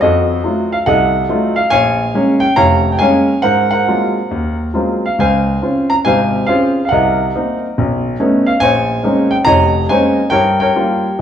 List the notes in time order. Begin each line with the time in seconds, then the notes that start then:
0.01 F2 F#4 A4 D#5
0.44 F#3 A3 D#4 F4
0.72 F5
0.86 C2 A4 D#5 F#5
1.29 F#3 A3 D#4 F4
1.56 F5
1.70 A#1 C#5 F5 G#5
2.14 G#3 A#3 C#4
2.40 G5
2.56 F1 C#5 F5 A#5
2.92 G5
2.99 G#3 A#3 C#4 C#5 F5 G#5
3.42 G#2 A#4 C5 F#5
3.71 A#4 C5 F#5
3.88 F#3 G#3 A#3 C4 F4
4.31 D#2
4.74 F#3 G#3 A#3 C4 F4
5.06 F5
5.19 C#2 C5 F5 G#5
5.62 C4 C#4 F4
5.90 A#5
6.05 G#1 C3 C5 F5 G#5
6.46 C4 C#4 F4 G#4 C5 F5
6.85 F5 F#5
6.91 C2 A#4 D#5
7.35 A#3 C4 D#4
7.78 B1
8.20 A3 B3 C#4 D#4
8.46 F5
8.60 A#1 C5 C#5 G#5
9.03 G#3 A#3 C4 C#4 D#4
9.31 G5
9.45 F1 C#5 D#5 A#5
9.89 G#3 A#3 C4 C#4 D#4 C5 C#5 G#5
10.30 G2 A#4 C#5 G5
10.60 A#4 C#5 G5
10.76 G3 A#3 F4